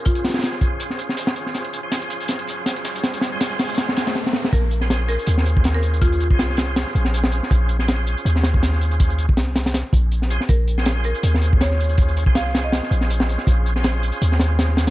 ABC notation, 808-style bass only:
X:1
M:4/4
L:1/16
Q:"Swing 16ths" 1/4=161
K:Bbm
V:1 name="808-style bass" clef=bass
z16 | z16 | z16 | B,,,6- B,,, z E,,8- |
E,,3 C,,6 z B,,,4- B,,, z | B,,,6- B,,, z E,,8- | E,,3 C,,6 z B,,,4- B,,, z | B,,,6- B,,, z E,,8- |
E,,3 C,,6 z B,,,4- B,,, z | B,,,6- B,,, z E,,8 |]